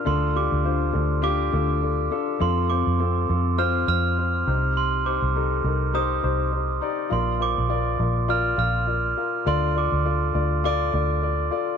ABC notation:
X:1
M:4/4
L:1/16
Q:"Swing 16ths" 1/4=102
K:Dphr
V:1 name="Glockenspiel"
c'2 d'4 z2 d'4 z4 | c'2 d'6 f'2 f'6 | c'2 d'4 z2 e'4 z4 | c'2 d'6 f'2 f'6 |
c'2 d'4 z2 d'4 z4 |]
V:2 name="Grand piano"
[DFA]2 [DFG]2 [DFc]2 [DFA]2 [DFG]2 [DFA]2 [DFA]2 [DFA]2 | [CFA]2 [CFc]2 [CFA]2 [CFA]2 [CFc]2 [CFc]2 [CFc]2 [EGc]2- | [EGc]2 [EGc]2 [EGA]2 [EGB]2 [EGc]2 [EGc]2 [EGc]2 [EGd]2 | [FBd]2 [FBc]2 [FBd]2 [FBd]2 [FBd]2 [FBf]2 [FBd]2 [FBf]2 |
[FAd]2 [FAd]2 [FAd]2 [FAd]2 [FAd]2 [FAd]2 [FAd]2 [FAd]2 |]
V:3 name="Grand piano" clef=bass
D,6 z8 z2 | z12 z2 C,2- | C,4 z12 | B,,6 z8 z2 |
D,6 z8 z2 |]
V:4 name="Fingered electric bass" clef=bass
D,,3 D,,3 D,,4 D,,4 z2 | F,,3 F,,3 F,,4 F,,4 C,,2- | C,,3 C,,3 C,,4 C,,4 z2 | B,,,3 B,,,3 B,,,4 B,,,4 z2 |
D,,3 D,,3 D,,4 D,,4 z2 |]